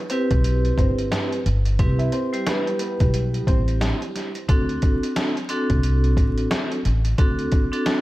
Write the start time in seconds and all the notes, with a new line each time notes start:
0.10 C4 E4 G4 B4 C5, closed hi-hat
0.31 B1, kick, closed hi-hat
0.44 closed hi-hat
0.65 closed hi-hat
0.78 G1 C4 C5, kick, closed hi-hat
0.98 closed hi-hat
1.12 snare, closed hi-hat
1.32 closed hi-hat
1.46 G1, closed hi-hat
1.65 closed hi-hat
1.79 C2 C4 E4 G4 B4, kick, closed hi-hat
1.99 E4 E5, closed hi-hat
2.12 C4 C5, closed hi-hat
2.33 G3 E4 G4, closed hi-hat
2.46 B3 B4, snare, closed hi-hat
2.67 closed hi-hat
2.79 B3 B4, closed hi-hat
3.00 B1, kick, closed hi-hat
3.14 closed hi-hat
3.34 closed hi-hat
3.47 A1 C4 C5, kick, closed hi-hat
3.68 closed hi-hat
3.81 snare, closed hi-hat
4.02 closed hi-hat
4.16 snare, closed hi-hat
4.35 closed hi-hat
4.48 D2 C4 D4 F#4 A4, kick, closed hi-hat
4.69 closed hi-hat
4.82 kick, closed hi-hat
5.03 closed hi-hat
5.16 snare, closed hi-hat
5.37 closed hi-hat
5.49 C4 D4 F#4 A4, closed hi-hat
5.70 C2, kick, closed hi-hat
5.83 closed hi-hat
6.04 closed hi-hat
6.17 A1, kick, closed hi-hat
6.38 closed hi-hat
6.51 snare, closed hi-hat
6.72 closed hi-hat
6.85 A1, closed hi-hat
7.05 closed hi-hat
7.18 D2 C4 D4 F#4 A4, kick, closed hi-hat
7.39 closed hi-hat
7.52 kick, closed hi-hat
7.72 C4 D4 F#4 A4, closed hi-hat
7.86 snare, closed hi-hat